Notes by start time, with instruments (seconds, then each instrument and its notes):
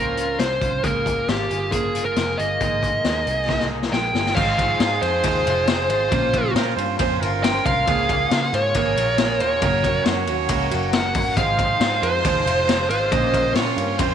Already playing: picked electric bass C#2, steel-string acoustic guitar A#2 F3 C4 C#4 F4, clean electric guitar A#3 F4 C5, lead electric guitar A#4
0.17 steel-string acoustic guitar C4 C#4 F4, closed hi-hat
0.39 picked electric bass C2, steel-string acoustic guitar F3 C4 C#4 F4, lead electric guitar C5, clean electric guitar C5, snare, closed hi-hat
0.61 picked electric bass C2, steel-string acoustic guitar C4 C#4 F4, kick, closed hi-hat
0.83 picked electric bass C#2, steel-string acoustic guitar C#3 F3 A#3 F4 G#4, lead electric guitar A#4, kick, closed hi-hat
1.06 steel-string acoustic guitar A#3 F4 G#4, kick, closed hi-hat
1.28 picked electric bass G#1, steel-string acoustic guitar F3 A#3 F4 G#4, lead electric guitar G4, snare, closed hi-hat
1.51 picked electric bass G1, steel-string acoustic guitar A#3 F4 G#4, closed hi-hat
1.72 steel-string acoustic guitar C#3 F3 A#3 F4 G#4, lead electric guitar G#4, kick, closed hi-hat
1.94 steel-string acoustic guitar A#3 F4 G#4, closed hi-hat
2.05 lead electric guitar A#4
2.16 picked electric bass F1, steel-string acoustic guitar F3 A#3 F4 G#4, snare, closed hi-hat
2.38 picked electric bass G1, clean electric guitar A#3, steel-string acoustic guitar F4 G#4, lead electric guitar D#5, closed hi-hat
2.43 steel-string acoustic guitar A#3
2.61 picked electric bass G#1, steel-string acoustic guitar G#3 A#3 D#4 G#4, kick, closed hi-hat
2.82 steel-string acoustic guitar A#3 D#4 G#4, kick, closed hi-hat
3.04 picked electric bass D#2, steel-string acoustic guitar G#3 A#3 D#4 G#4, snare, closed hi-hat
3.26 picked electric bass C2, steel-string acoustic guitar A#3 D#4 G#4, closed hi-hat
3.48 steel-string acoustic guitar G#3 A#3 D#4 G#4, kick, snare
3.60 snare
3.70 steel-string acoustic guitar A#3 D#4 G#4
3.82 snare
3.92 picked electric bass A#1, steel-string acoustic guitar G#3 A#3 D#4 G#4, lead electric guitar G5, snare
4.13 picked electric bass G1, steel-string acoustic guitar A#3 D#4 G#4, snare
4.26 snare
4.35 picked electric bass G#1, steel-string acoustic guitar G#2 D#3 F3 G#3 C4 F4, trumpet G#4, lead electric guitar F5, kick, crash
4.57 steel-string acoustic guitar F3 G#3 C4 F4, clean electric guitar D#4, kick, ride
4.80 picked electric bass G#2, steel-string acoustic guitar F3 G#3 C4 F4, snare, ride
5.01 picked electric bass F2, steel-string acoustic guitar F3 G#3 C4 F4, clean electric guitar D#4, lead electric guitar C5, ride
5.23 picked electric bass D#2, steel-string acoustic guitar G#2 D#3 F3 G#3 C4 F4, clean electric guitar C5, kick, ride
5.45 picked electric bass F1, steel-string acoustic guitar F3 G#3 C4 F4, ride
5.66 steel-string acoustic guitar F3 G#3 C4 F4, clean electric guitar C5, snare, ride
5.88 picked electric bass G#1, steel-string acoustic guitar F3 G#3 C4 F4, lead electric guitar C5, ride
6.11 picked electric bass A#1, steel-string acoustic guitar A#2 F3 C4 C#4 F4, clean electric guitar A#3, trumpet F4, kick, ride
6.33 steel-string acoustic guitar C4 C#4 F4, kick, ride
6.54 picked electric bass A#2, steel-string acoustic guitar F3 C4 C#4 F4, trumpet A#4, snare, ride
6.76 picked electric bass G2, steel-string acoustic guitar C4 C#4 F4, trumpet C5, ride
6.99 picked electric bass F2, steel-string acoustic guitar A#2 F3 C4 C#4 F4, trumpet C5, clean electric guitar C5, kick, ride
7.21 picked electric bass G1, steel-string acoustic guitar C4 C#4 F4, trumpet A#4, ride
7.43 steel-string acoustic guitar F3 C4 C#4 F4, clean electric guitar C5, lead electric guitar G5, snare, ride
7.65 picked electric bass C2, steel-string acoustic guitar C4 C#4 F4, lead electric guitar F5, kick, ride
7.87 picked electric bass C#2, steel-string acoustic guitar C#3 F3 A#3 F4 G#4, trumpet G#4, kick, ride
8.08 steel-string acoustic guitar A#3 F4 G#4, kick, ride
8.30 picked electric bass C#3, steel-string acoustic guitar F3 A#3 F4 G#4, clean electric guitar D#4, snare, ride
8.42 clean electric guitar F4
8.52 picked electric bass G#2, steel-string acoustic guitar A#3 F4 G#4, lead electric guitar C#5, ride
8.74 picked electric bass G#1, steel-string acoustic guitar C#3 F3 A#3 F4 G#4, trumpet A#4, kick, ride
8.96 picked electric bass A#1, steel-string acoustic guitar A#3 F4 G#4, ride
9.18 steel-string acoustic guitar F3 A#3 F4 G#4, snare, ride
9.40 picked electric bass D#1, steel-string acoustic guitar A#3 F4 G#4, lead electric guitar C#5, ride
9.62 picked electric bass F#1, steel-string acoustic guitar F#2 C#3 F#3 A#3 C#4 F#4, trumpet A#4, kick, ride
9.84 steel-string acoustic guitar F#3 A#3 C#4 F#4, kick, ride
10.04 picked electric bass F#2, steel-string acoustic guitar F#3 A#3 C#4, trumpet C#5, snare, ride
10.09 steel-string acoustic guitar F#4
10.27 picked electric bass D#2, steel-string acoustic guitar F#3 A#3 C#4 F#4, ride
10.48 picked electric bass C#2, steel-string acoustic guitar F#2 C#3 F#3 A#3 C#4 F#4, clean electric guitar A#4, kick, ride
10.71 picked electric bass F#1, steel-string acoustic guitar F#3 A#3 C#4 F#4, ride
10.92 steel-string acoustic guitar F#3 A#3 C#4 F#4, clean electric guitar A#4, lead electric guitar F#5, snare, ride
11.14 steel-string acoustic guitar F#3 A#3 C#4 F#4, kick, open hi-hat, ride
11.36 picked electric bass G#1, steel-string acoustic guitar G#2 D#3 F3 G#3 C4 F4, string machine G#4 D#5 F5 C6, trumpet C5, lead electric guitar F5, kick, hi-hat pedal, ride
11.59 steel-string acoustic guitar F3 G#3 C4 F4, clean electric guitar D#4, kick, ride
11.80 picked electric bass G#2, steel-string acoustic guitar F3 G#3 C4 F4, clean electric guitar D#4, snare, ride
11.91 clean electric guitar F4
12.02 picked electric bass F2, steel-string acoustic guitar F3 G#3 C4 F4, clean electric guitar D#4, lead electric guitar C5, ride
12.24 picked electric bass D#2, steel-string acoustic guitar G#2 D#3 F3 G#3 C4 F4, clean electric guitar C5, kick, ride
12.45 picked electric bass F1, steel-string acoustic guitar F3 G#3 C4 F4, ride
12.67 steel-string acoustic guitar F3 G#3 C4 F4, clean electric guitar A#4, snare, ride
12.79 clean electric guitar C5
12.89 picked electric bass G#1, steel-string acoustic guitar F3 G#3 C4 F4, lead electric guitar C5, ride
13.06 trumpet F5
13.12 picked electric bass A#1, steel-string acoustic guitar A#2 F3 C4 C#4 F4, clean electric guitar A#3, string machine C#4 A#4 C6, trumpet D#5, kick, ride
13.32 steel-string acoustic guitar C4 C#4 F4, kick, ride
13.54 picked electric bass A#2, steel-string acoustic guitar F3 C4 C#4 F4, trumpet C#5, snare, ride
13.76 picked electric bass G2, steel-string acoustic guitar C4 C#4 F4, ride
13.98 picked electric bass F2, steel-string acoustic guitar A#2 F3 C4 C#4 F4, trumpet C5, clean electric guitar C5, kick, ride